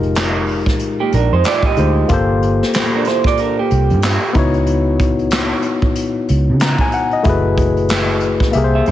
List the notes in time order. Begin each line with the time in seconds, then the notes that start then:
Already playing: F1 G#3 D#4 F4 G4 A#4
0.03 closed hi-hat
0.15 snare, clap, closed hi-hat
0.46 open hi-hat
0.66 kick, snare, closed hi-hat
0.79 closed hi-hat
1.00 A#3 G4
1.12 A#1 D4 A#4, closed hi-hat
1.32 F2 D#4 C5
1.44 F4 D5, snare, clap, closed hi-hat
1.63 G4 D#5, kick
1.76 D2 G#3 D#4 F4 G4 C5, closed hi-hat
2.08 G1 A#3 F4 G4, kick, closed hi-hat
2.12 A4 C5
2.42 closed hi-hat
2.63 snare
2.73 snare, clap, closed hi-hat
2.95 D4 A#4
3.05 E4 C5, snare, closed hi-hat
3.24 F4 D5, kick, snare
3.37 D4 A#4, closed hi-hat
3.59 A#3 G4
3.70 C2, closed hi-hat
3.90 G2, closed hi-hat
4.02 snare, clap, closed hi-hat
4.33 C#2 B3 D#4 E4, kick, closed hi-hat
4.37 F#4 C#5
4.54 closed hi-hat
4.66 closed hi-hat
5.00 kick, closed hi-hat
5.19 closed hi-hat
5.30 snare, clap, closed hi-hat
5.62 closed hi-hat
5.82 kick
5.95 closed hi-hat
6.28 C#2, closed hi-hat
6.49 C#3
6.60 A#5, snare, clap, closed hi-hat
6.79 G#5, kick
6.92 F#5, closed hi-hat
7.11 D#5, closed hi-hat
7.23 F#1 A3 E4 F#4, kick, closed hi-hat
7.28 G#4 B4
7.58 kick, closed hi-hat
7.77 closed hi-hat
7.89 snare, clap, closed hi-hat
8.20 closed hi-hat
8.40 kick, snare
8.52 C2 A#3 G4 E5, closed hi-hat
8.56 G#4 A#4
8.64 C5
8.75 G#4 E5
8.86 G2 E4 C5, closed hi-hat